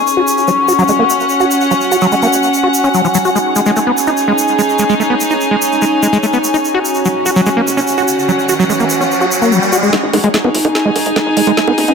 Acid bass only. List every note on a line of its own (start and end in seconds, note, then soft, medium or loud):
0.17 0.22 F#4 medium
0.48 0.51 F#3 medium
0.68 0.73 F#4 medium
0.79 0.83 F#3 loud
0.89 0.92 G#3 medium
0.99 1.04 A#3 medium
1.40 1.45 F#4 medium
1.71 1.74 F#3 medium
1.92 1.96 F#4 medium
2.02 2.07 F#3 loud
2.12 2.15 G#3 medium
2.22 2.27 A#3 medium
2.63 2.68 F#4 medium
2.84 2.89 C#4 medium
2.94 3.02 F#3 medium
3.05 3.08 F3 medium
3.15 3.18 F#3 loud
3.25 3.30 F#4 medium
3.35 3.38 G#3 medium
3.56 3.61 G#3 medium
3.66 3.71 G#3 loud
3.76 3.79 A3 medium
3.87 3.92 B3 medium
4.07 4.10 D#4 medium
4.28 4.33 G#3 medium
4.59 4.62 G#3 medium
4.79 4.84 G#3 medium
4.89 4.94 G#3 loud
5.00 5.03 A3 medium
5.10 5.15 B3 medium
5.31 5.34 D#4 medium
5.51 5.56 G#3 medium
5.82 5.85 G#3 medium
6.03 6.07 G#3 medium
6.13 6.18 G#3 loud
6.23 6.26 A3 medium
6.33 6.38 B3 medium
6.54 6.57 D#4 medium
6.74 6.79 F#4 medium
7.05 7.08 F#3 medium
7.26 7.31 F#4 medium
7.36 7.41 F#3 loud
7.46 7.49 G#3 medium
7.57 7.62 A#3 medium
7.77 7.80 C#4 medium
7.98 8.03 F#4 medium
8.29 8.32 F#3 medium
8.49 8.54 F#4 medium
8.59 8.64 F#3 loud
8.70 8.73 G#3 medium
8.80 8.85 A#3 medium
9.00 9.03 C#4 medium
9.21 9.26 F#4 medium
9.42 9.53 A#3 medium
9.52 9.59 F3 medium
9.72 9.77 F#4 loud
9.83 9.90 G#3 medium
9.93 9.96 G#3 medium
10.13 10.18 G#3 medium
10.24 10.29 G#3 loud
10.34 10.37 A3 medium
10.44 10.49 B3 medium
10.65 10.68 D#4 medium
10.85 10.90 G#3 medium
11.16 11.19 G#3 medium
11.37 11.42 G#3 medium
11.47 11.52 G#3 loud
11.57 11.60 A3 medium
11.68 11.73 B3 medium
11.88 11.91 D#4 medium